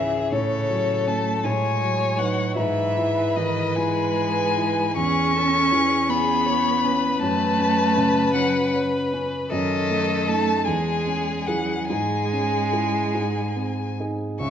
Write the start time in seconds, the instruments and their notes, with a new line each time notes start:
Already playing: grand piano C#2 G#2 C#4 C#5, cello E3, violin G#4 E5
0.32 grand piano A2, cello C#3, violin A4 C#5
0.69 grand piano F#3
1.07 cello A3, grand piano C#4 C#5, violin A5
1.44 grand piano A2, cello G#3, violin C#5 G#5
1.81 grand piano F#3
2.18 cello F#3, grand piano D#4 B4, violin F#5
2.55 grand piano G#2, cello E3, violin B4 E5
2.97 grand piano E4
3.36 cello D#3, grand piano E3, violin D#5
3.75 cello G#3, grand piano E4, violin G#5
4.17 grand piano B4
4.57 grand piano E4
4.95 grand piano E2, cello C#4, violin G#4 C#6
5.35 grand piano C#4, violin A4
5.72 grand piano E3, violin G#4
6.08 cello B3, grand piano C#4, violin G#4 B5
6.46 grand piano C#5, violin C#5
6.83 grand piano C#4, violin B4
7.21 grand piano F#2, cello A3, violin A5
7.59 grand piano C#4
7.97 grand piano C#3
8.34 cello F#3, grand piano C#4, violin F#5
8.74 grand piano C#5
9.14 grand piano C#4
9.50 grand piano F#2, cello D#3, violin A4 D#5
9.91 grand piano A3
10.27 cello A3, grand piano D#4 A4, violin A5
10.64 grand piano E2, cello G#3, violin G#4 G#5
11.07 grand piano C#4
11.47 cello F#3, grand piano E4 G#4, violin F#5
11.87 grand piano G#2, cello G#3, violin G#4 G#5
12.33 grand piano C#4
12.73 grand piano E4 G#4
13.14 grand piano G#2
13.56 grand piano C4
14.00 grand piano D#4 G#4
14.40 grand piano C#2, cello C#3, violin E5 C#6